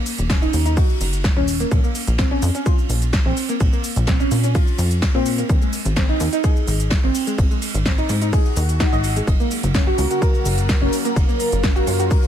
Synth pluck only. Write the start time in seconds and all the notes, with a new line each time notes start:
0.30 C#4
0.42 D#4
0.66 D#4
0.77 F#4
1.37 C#4
1.60 A#3
1.84 A#3
2.19 C4
2.31 C#4
2.55 C#4
2.66 F4
3.26 C4
3.49 A#3
3.73 A#3
4.08 C4
4.20 C#4
4.44 C#4
4.55 F4
5.15 C4
5.38 A#3
5.62 G#3
5.97 C4
6.09 D#4
6.33 D#4
6.44 G#4
7.04 C4
7.27 G#3
7.51 G#3
7.86 C4
7.98 D#4
8.22 D#4
8.33 G#4
8.80 D#4
8.93 D#5
9.16 G#3
9.40 A#3
9.75 C#4
9.87 F#4
10.11 F#4
10.22 A#4
10.82 C#4
11.05 A#3
11.29 A#3
11.64 C#4
11.76 F#4
12.00 F#4
12.11 A#4